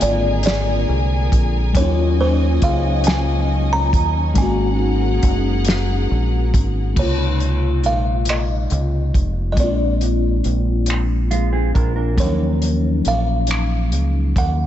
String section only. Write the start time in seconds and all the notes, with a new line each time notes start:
Already playing: D3 G#4 A#4 G#5
1.75 F#3 C#4 D#5
4.36 G#4 A#4 F#5